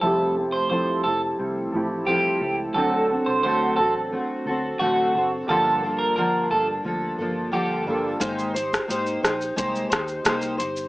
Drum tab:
HH |----------------|----------------|----------------|x-x-x-x-x-x-x-x-|
SH |----------------|----------------|----------------|xxxxxxxxxxxxxxxx|
SD |----------------|----------------|----------------|---r--r---r-r---|
BD |----------------|----------------|----------------|o--o----o-o-----|